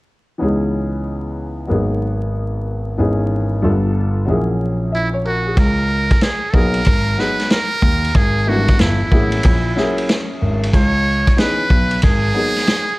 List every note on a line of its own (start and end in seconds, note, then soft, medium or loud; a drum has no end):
0.38 1.66 C#2 medium
0.38 1.66 E3 medium
0.38 1.67 B3 medium
0.38 1.67 C#4 medium
0.38 1.68 D#4 medium
0.43 1.68 G#4 medium
1.67 2.95 G#1 medium
1.67 2.95 F#3 medium
1.67 2.96 A#3 medium
1.67 2.96 B3 medium
1.67 2.97 D#4 medium
1.72 2.97 G#4 medium
2.98 3.60 G#1 medium
2.98 3.63 E3 medium
2.98 3.63 B3 medium
2.98 3.63 C#4 medium
2.98 3.64 D#4 medium
2.98 3.64 G#4 medium
3.62 4.25 G1 medium
3.62 4.27 G3 medium
3.62 3.72 A3 soft
3.62 4.28 D4 medium
3.62 4.28 F4 medium
3.62 4.28 A4 medium
3.69 4.31 B3 medium
4.25 5.53 A#1 medium
4.25 5.53 F#3 medium
4.25 4.35 G#3 soft
4.25 5.54 C#4 medium
4.25 5.55 E4 medium
4.30 5.57 A#3 medium
4.30 4.92 G#4 medium
4.92 5.09 E4 medium
4.92 5.12 E5 medium
5.13 5.24 C#5 medium
5.25 5.60 F#4 medium
5.25 5.45 A#4 medium
5.46 5.77 G#4 medium
5.57 6.09 C#2 medium
5.57 6.24 A#4 loud
5.57 kick medium
5.57 ride medium
6.10 kick medium
6.10 ride medium
6.21 6.52 G#4 medium
6.21 snare loud
6.21 hi-hat pedal soft
6.21 ride medium
6.50 6.80 B1 medium
6.50 6.79 F#3 medium
6.50 6.79 A#3 medium
6.50 6.79 B3 medium
6.50 6.57 A4 medium
6.50 kick medium
6.54 6.80 D#4 medium
6.54 6.80 G#4 medium
6.54 7.21 A#4 loud
6.74 ride medium
6.85 7.12 G#1 medium
6.85 kick medium
6.85 ride medium
7.17 7.58 F#3 medium
7.17 7.59 G#3 medium
7.17 7.59 B3 soft
7.17 7.59 D#4 medium
7.17 7.60 G#4 medium
7.17 7.51 B4 medium
7.17 snare soft
7.40 snare soft
7.40 ride soft
7.50 8.18 A#4 loud
7.50 snare loud
7.50 hi-hat pedal soft
7.50 ride medium
7.82 8.08 D#2 medium
7.82 kick loud
8.04 ride medium
8.14 8.67 G#1 loud
8.14 8.50 G#4 medium
8.14 kick loud
8.14 ride medium
8.46 9.39 E3 medium
8.46 9.39 A3 medium
8.46 9.40 B3 medium
8.46 9.40 D4 medium
8.46 8.56 F#4 soft
8.46 8.82 F#4 medium
8.55 9.43 G3 medium
8.68 kick medium
8.68 ride medium
8.79 8.97 G1 loud
8.79 10.41 E4 medium
8.79 snare loud
8.79 hi-hat pedal soft
8.79 ride medium
9.01 9.05 A1 soft
9.11 9.38 A1 medium
9.11 9.52 F#3 medium
9.11 9.52 A#3 medium
9.11 9.53 C#4 medium
9.11 9.53 E4 medium
9.11 9.53 G#4 medium
9.11 kick medium
9.32 ride medium
9.43 9.70 A#1 loud
9.43 kick medium
9.43 ride medium
9.75 10.68 F#3 medium
9.75 9.85 A3 soft
9.75 10.69 C#4 medium
9.75 10.69 E4 medium
9.75 10.69 G#4 medium
9.75 snare soft
9.82 10.72 A#3 medium
9.98 ride soft
10.09 snare loud
10.09 hi-hat pedal soft
10.09 ride medium
10.42 10.67 G#1 medium
10.63 ride medium
10.73 11.25 C#2 loud
10.73 11.34 C#5 loud
10.73 kick medium
10.73 ride medium
11.27 kick medium
11.27 ride medium
11.34 11.62 E3 medium
11.34 11.63 B3 medium
11.34 11.63 C#4 medium
11.34 11.63 D#4 medium
11.34 11.40 C#5 medium
11.34 hi-hat pedal soft
11.34 ride medium
11.38 11.63 G#4 medium
11.38 12.03 B4 medium
11.38 snare loud
11.70 11.96 B1 medium
11.70 kick medium
11.91 ride medium
12.02 12.29 G#1 loud
12.02 12.99 G#4 loud
12.02 kick medium
12.02 ride medium
12.33 12.83 F#3 medium
12.33 12.83 A#3 medium
12.33 12.83 B3 medium
12.33 12.84 D#4 medium
12.33 12.84 G#4 medium
12.56 snare soft
12.56 ride soft
12.67 snare loud
12.67 hi-hat pedal soft
12.67 ride medium